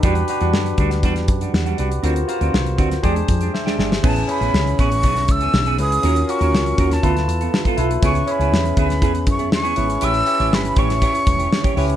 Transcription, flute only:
\new Staff \with { instrumentName = "Flute" } { \time 4/4 \key e \minor \tempo 4 = 120 r1 | r1 | \key a \major a''8 b''4 cis'''4 e'''4 dis'''8~ | dis'''8 cis'''4~ cis'''16 a''4.~ a''16 r8 |
cis'''8 b''4 b''4 cis'''8 cis'''4 | e'''4 b''8 cis'''2 r8 | }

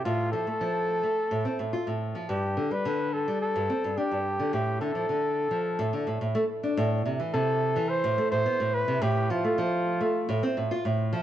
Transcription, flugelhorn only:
\new Staff \with { instrumentName = "Flugelhorn" } { \time 4/4 \key a \minor \tempo 4 = 107 f'8 a'2. r8 | g'8. b'8. a'8 a'4 g'4 | g'8 a'2. r8 | r4 a'4 c''8. c''8. b'8 |
g'8 f'2 r4. | }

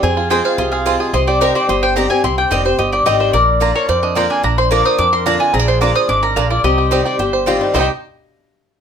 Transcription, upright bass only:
\new Staff \with { instrumentName = "Upright bass" } { \clef bass \time 4/4 \key c \minor \tempo 4 = 218 f,2 c,2 | c,2 g,,2 | c,4 f,,4 g,,4 aes,,4 | bes,,2 f,2 |
bes,,2 f,2 | bes,,2 aes,,4 bes,,4 | c,2 g,,2 | c,8 r2. r8 | }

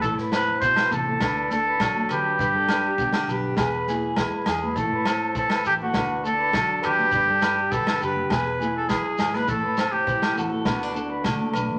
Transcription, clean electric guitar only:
\new Staff \with { instrumentName = "Clean electric guitar" } { \time 4/4 \key g \major \tempo 4 = 102 a'16 b'16 c''8 c''16 b'16 a'16 a'16 b'8 a'16 b'16 a'8 b'8 | b'16 a'16 b'16 g'16 r8 g'8 gis'16 b'16 gis'8 b'16 b'16 gis'16 b'16 | a'16 b'16 c''8 c''16 b'16 a'16 a'16 b'8 a'16 b'16 a'8 b'8 | b'16 a'16 b'16 g'16 b'8 g'8 gis'16 b'16 gis'8 b'16 r16 gis'16 b'16 |
a'16 b'16 c''8 c''16 r16 a'16 a'16 b'8 a'16 b'16 a'8 b'8 | }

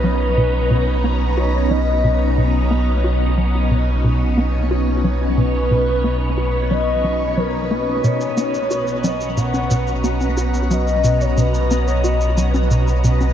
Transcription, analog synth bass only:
\new Staff \with { instrumentName = "Analog synth bass" } { \clef bass \time 4/4 \key b \major \tempo 4 = 90 fis8 b,8 b,8 b8 fis'8 fis8 b,8 b,8 | b8 fis'8 fis8 b,8 b,8 b8 fis'8 fis8 | b,8 b,8 b8 fis'8 fis8 fis8 fis8 ais8 | b,8 b8 fis'8 fis8 b,8 b,8 b8 fis'8 |
fis8 b,8 b,8 b8 fis'8 fis8 b,8 b,8 | }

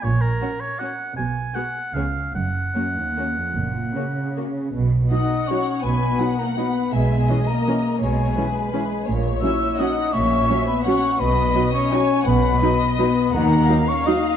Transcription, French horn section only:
\new Staff \with { instrumentName = "French horn section" } { \time 3/4 \key fis \major \tempo 4 = 164 r2. | r2. | r2. | r2. |
\key b \major r4 dis'4 cis'4 | b4. ais8 b4 | gis4. ais4. | gis2 gis4 |
r4 e'4 dis'4 | cis'4. b8 cis'4 | b4. cis'4. | b2 b4 |
\key dis \minor ais4. cis'8 dis'4 | }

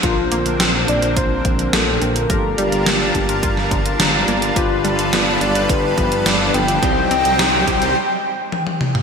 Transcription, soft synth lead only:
\new Staff \with { instrumentName = "Soft synth lead" } { \time 4/4 \key g \minor \tempo 4 = 106 f'4 r8 d''8 c''4 a'8 bes'8 | a'8 g'2 r4. | f'4 r8 d''8 b'4 d''8 g''8~ | g''2.~ g''8 r8 | }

